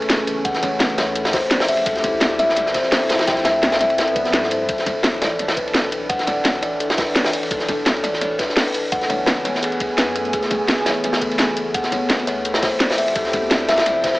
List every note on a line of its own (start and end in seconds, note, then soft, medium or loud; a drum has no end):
0.00 0.44 F#1 medium
0.00 1.11 E3 medium
0.00 1.12 A3 medium
0.00 1.13 C#4 medium
0.00 1.12 G#5 loud
0.00 ride medium
0.10 0.20 G#4 medium
0.10 snare loud
0.10 closed hi-hat medium
0.10 ride medium
0.27 0.43 A4 medium
0.27 closed hi-hat medium
0.27 ride medium
0.27 ride bell medium
0.45 0.99 F#1 loud
0.45 0.62 F#5 loud
0.45 kick loud
0.45 closed hi-hat medium
0.45 ride medium
0.54 snare soft
0.54 closed hi-hat soft
0.63 0.79 C#5 loud
0.63 kick medium
0.63 snare soft
0.63 closed hi-hat medium
0.63 ride medium
0.63 ride bell medium
0.80 0.96 B4 medium
0.80 snare loud
0.80 closed hi-hat loud
0.80 ride medium
0.90 ride medium
0.98 1.32 D2 medium
0.98 1.15 C#5 loud
0.98 snare loud
0.98 snare soft
0.98 closed hi-hat medium
0.98 ride medium
0.98 ride bell medium
1.15 4.65 F3 medium
1.15 4.65 C4 medium
1.15 4.65 E4 medium
1.15 2.55 G4 medium
1.15 1.26 A4 medium
1.15 closed hi-hat loud
1.15 ride medium
1.25 snare loud
1.25 ride medium
1.33 1.49 C5 loud
1.33 kick loud
1.33 snare loud
1.33 closed hi-hat medium
1.33 open hi-hat medium
1.33 ride bell medium
1.51 1.67 D5 medium
1.51 snare loud
1.51 closed hi-hat loud
1.51 ride medium
1.60 snare loud
1.60 open hi-hat medium
1.68 1.85 E5 medium
1.68 closed hi-hat medium
1.68 ride bell medium
1.77 ride medium
1.86 2.41 D2 loud
1.86 1.96 A4 loud
1.86 kick loud
1.86 closed hi-hat loud
1.86 ride medium
1.96 snare soft
1.96 closed hi-hat soft
2.04 2.14 A4 loud
2.04 kick loud
2.04 snare soft
2.04 closed hi-hat medium
2.04 ride medium
2.04 ride bell medium
2.21 2.38 D5 medium
2.21 snare loud
2.21 closed hi-hat loud
2.21 ride medium
2.30 ride soft
2.39 2.73 C2 medium
2.39 2.56 E5 loud
2.39 snare soft
2.39 closed hi-hat medium
2.39 ride medium
2.39 ride bell medium
2.49 snare soft
2.56 8.88 A4 medium
2.56 2.74 D5 medium
2.56 snare soft
2.56 closed hi-hat loud
2.56 ride medium
2.66 snare soft
2.74 2.90 C5 loud
2.74 kick medium
2.74 snare medium
2.74 closed hi-hat medium
2.74 ride medium
2.74 ride bell medium
2.83 snare soft
2.92 3.02 A4 medium
2.92 snare loud
2.92 closed hi-hat loud
2.92 open hi-hat medium
3.09 3.26 C5 medium
3.09 snare loud
3.09 closed hi-hat medium
3.09 ride medium
3.09 ride bell medium
3.19 snare loud
3.19 ride medium
3.27 3.82 D2 loud
3.27 3.44 G5 loud
3.27 kick loud
3.27 snare loud
3.27 closed hi-hat loud
3.27 ride medium
3.37 snare soft
3.37 closed hi-hat soft
3.45 3.61 E5 loud
3.45 kick medium
3.45 snare loud
3.45 snare soft
3.45 closed hi-hat medium
3.45 ride medium
3.45 ride bell medium
3.63 3.79 D5 medium
3.63 snare loud
3.63 closed hi-hat loud
3.63 ride medium
3.72 snare loud
3.72 ride medium
3.80 4.27 C2 medium
3.80 3.97 E5 loud
3.80 snare soft
3.80 closed hi-hat medium
3.80 ride bell medium
3.90 ride medium
3.98 4.08 A4 medium
3.98 snare loud
3.98 closed hi-hat loud
3.98 ride medium
3.98 swell medium
4.08 closed hi-hat soft
4.08 ride soft
4.16 4.32 D5 medium
4.16 kick loud
4.16 closed hi-hat medium
4.16 ride medium
4.16 ride bell medium
4.25 4.67 G2 loud
4.25 snare soft
4.25 closed hi-hat soft
4.33 4.49 A4 loud
4.33 snare loud
4.33 closed hi-hat loud
4.33 ride medium
4.43 snare soft
4.51 4.67 C5 medium
4.51 closed hi-hat medium
4.51 ride medium
4.51 ride bell medium
4.69 5.23 B1 loud
4.69 8.88 E3 medium
4.69 8.88 D4 medium
4.69 4.79 A4 loud
4.69 kick loud
4.69 closed hi-hat loud
4.69 ride medium
4.78 snare soft
4.78 closed hi-hat soft
4.86 4.96 A4 loud
4.86 kick loud
4.86 snare medium
4.86 closed hi-hat medium
4.86 ride medium
4.86 ride bell medium
5.03 5.20 C#5 medium
5.03 snare loud
5.03 closed hi-hat loud
5.03 ride loud
5.14 ride soft
5.21 5.56 A1 medium
5.21 5.38 D5 loud
5.21 snare loud
5.21 snare soft
5.21 closed hi-hat medium
5.21 ride medium
5.21 ride bell medium
5.39 5.56 C#5 medium
5.39 snare soft
5.39 closed hi-hat loud
5.39 ride medium
5.48 snare medium
5.48 ride medium
5.57 6.08 B1 medium
5.57 5.73 B4 loud
5.57 kick medium
5.57 closed hi-hat medium
5.57 ride bell medium
5.67 ride medium
5.74 5.84 A4 medium
5.74 snare loud
5.74 closed hi-hat loud
5.74 ride medium
5.92 6.08 B4 medium
5.92 closed hi-hat medium
5.92 ride medium
5.92 ride bell medium
6.09 6.64 B1 loud
6.09 6.26 F#5 loud
6.09 kick loud
6.09 closed hi-hat loud
6.09 ride loud
6.19 snare soft
6.19 closed hi-hat soft
6.27 6.43 D5 loud
6.27 kick medium
6.27 snare medium
6.27 closed hi-hat medium
6.27 ride medium
6.27 ride bell medium
6.45 snare loud
6.45 closed hi-hat loud
6.45 ride medium
6.55 ride soft
6.62 6.97 A1 medium
6.62 6.79 D5 loud
6.62 closed hi-hat medium
6.62 ride medium
6.62 ride bell medium
6.80 6.90 A4 medium
6.80 closed hi-hat loud
6.80 ride medium
6.90 snare loud
6.90 ride medium
6.98 7.14 B4 loud
6.98 kick loud
6.98 snare loud
6.98 closed hi-hat medium
6.98 open hi-hat medium
6.98 ride bell medium
7.15 7.31 C#5 medium
7.15 snare loud
7.15 closed hi-hat loud
7.15 ride medium
7.24 snare loud
7.24 open hi-hat medium
7.33 7.49 D5 medium
7.33 closed hi-hat medium
7.33 ride bell medium
7.43 ride medium
7.51 8.05 B1 loud
7.51 7.61 A4 loud
7.51 kick loud
7.51 closed hi-hat medium
7.51 ride loud
7.60 snare soft
7.60 closed hi-hat soft
7.68 7.79 A4 loud
7.68 kick loud
7.68 snare medium
7.68 closed hi-hat medium
7.68 ride medium
7.68 ride bell medium
7.86 8.02 C#5 medium
7.86 snare loud
7.86 closed hi-hat medium
7.86 ride loud
7.96 ride soft
8.04 8.38 A1 medium
8.04 8.21 D5 loud
8.04 snare soft
8.04 closed hi-hat medium
8.04 ride medium
8.04 ride bell medium
8.13 snare soft
8.21 8.38 C#5 medium
8.21 snare soft
8.21 closed hi-hat medium
8.21 ride medium
8.39 8.55 B4 loud
8.39 kick medium
8.39 snare medium
8.39 closed hi-hat medium
8.39 ride medium
8.39 ride bell medium
8.49 snare soft
8.56 8.67 A4 medium
8.56 snare loud
8.56 closed hi-hat medium
8.56 open hi-hat medium
8.74 8.90 B4 medium
8.74 closed hi-hat medium
8.74 ride medium
8.74 ride bell medium
8.92 9.46 F#1 loud
8.92 12.42 E3 medium
8.92 12.42 A3 medium
8.92 12.42 B3 medium
8.92 9.09 F#5 loud
8.92 12.42 G#5 medium
8.92 kick loud
8.92 closed hi-hat medium
8.92 ride loud
9.01 snare soft
9.01 closed hi-hat soft
9.09 9.26 C#5 loud
9.09 kick medium
9.09 snare soft
9.09 closed hi-hat medium
9.09 ride medium
9.09 ride bell medium
9.26 9.43 B4 medium
9.26 snare loud
9.26 closed hi-hat medium
9.26 ride loud
9.36 ride soft
9.45 9.99 E1 medium
9.45 9.62 C#5 loud
9.45 snare soft
9.45 closed hi-hat medium
9.45 ride medium
9.45 ride bell medium
9.55 snare medium
9.62 9.73 G#4 medium
9.62 closed hi-hat medium
9.62 ride loud
9.72 closed hi-hat soft
9.80 9.90 G#4 medium
9.80 kick loud
9.80 closed hi-hat medium
9.80 ride medium
9.80 ride bell medium
9.98 10.32 F#2 medium
9.98 10.14 B4 loud
9.98 snare loud
9.98 closed hi-hat medium
9.98 ride medium
10.15 10.31 A4 medium
10.15 closed hi-hat medium
10.15 ride medium
10.15 ride bell medium
10.25 closed hi-hat soft
10.33 10.88 F#1 loud
10.33 10.43 G#4 loud
10.33 kick loud
10.33 closed hi-hat medium
10.33 ride medium
10.42 snare soft
10.42 closed hi-hat soft
10.50 10.61 G#4 loud
10.50 kick loud
10.50 snare soft
10.50 closed hi-hat medium
10.50 ride medium
10.50 ride bell medium
10.68 10.85 B4 medium
10.68 snare loud
10.68 closed hi-hat loud
10.68 ride medium
10.78 ride soft
10.86 11.20 E1 medium
10.86 11.03 C#5 loud
10.86 snare loud
10.86 snare soft
10.86 closed hi-hat medium
10.86 ride medium
10.86 ride bell medium
11.04 11.21 B4 medium
11.04 snare soft
11.04 closed hi-hat medium
11.04 ride medium
11.13 snare medium
11.13 ride medium
11.21 11.73 F#1 medium
11.21 11.37 A4 loud
11.21 kick medium
11.21 closed hi-hat medium
11.21 ride bell medium
11.31 ride medium
11.38 11.49 G#4 medium
11.38 snare loud
11.38 closed hi-hat medium
11.38 ride medium
11.57 11.73 A4 medium
11.57 closed hi-hat medium
11.57 ride medium
11.57 ride bell medium
11.74 12.29 F#1 loud
11.74 11.91 F#5 loud
11.74 kick loud
11.74 closed hi-hat loud
11.74 ride loud
11.83 snare soft
11.83 closed hi-hat soft
11.92 12.08 C#5 loud
11.92 kick medium
11.92 snare soft
11.92 closed hi-hat medium
11.92 ride medium
11.92 ride bell medium
12.09 12.26 B4 medium
12.09 snare loud
12.09 closed hi-hat loud
12.09 ride medium
12.19 ride soft
12.27 12.61 D2 medium
12.27 12.44 C#5 loud
12.27 closed hi-hat medium
12.27 ride medium
12.27 ride bell medium
12.45 14.19 F3 medium
12.45 14.19 C4 medium
12.45 14.19 E4 medium
12.45 13.85 G4 loud
12.45 12.55 A4 medium
12.45 closed hi-hat medium
12.45 ride medium
12.54 snare loud
12.54 ride medium
12.62 12.79 C5 loud
12.62 kick loud
12.62 snare loud
12.62 closed hi-hat medium
12.62 open hi-hat medium
12.62 ride bell medium
12.80 12.96 D5 medium
12.80 snare loud
12.80 closed hi-hat loud
12.80 ride medium
12.89 snare loud
12.89 open hi-hat medium
12.98 13.14 E5 medium
12.98 closed hi-hat medium
12.98 ride bell medium
13.08 ride medium
13.15 13.70 D2 loud
13.15 13.26 A4 loud
13.15 kick loud
13.15 closed hi-hat loud
13.15 ride medium
13.25 snare soft
13.25 closed hi-hat soft
13.33 13.43 A4 loud
13.33 kick loud
13.33 snare soft
13.33 closed hi-hat medium
13.33 ride medium
13.33 ride bell medium
13.51 13.67 D5 medium
13.51 snare loud
13.51 closed hi-hat loud
13.51 ride loud
13.60 ride soft
13.68 14.03 C2 medium
13.68 13.85 E5 loud
13.68 snare loud
13.68 snare medium
13.68 closed hi-hat medium
13.68 ride medium
13.68 ride bell medium
13.77 snare loud
13.77 ride medium
13.86 14.19 A4 loud
13.86 14.03 D5 medium
13.86 snare soft
13.86 closed hi-hat medium
13.86 ride loud
14.04 14.19 C5 loud
14.04 kick medium
14.04 snare medium
14.04 closed hi-hat medium
14.04 ride medium
14.04 ride bell medium
14.13 snare soft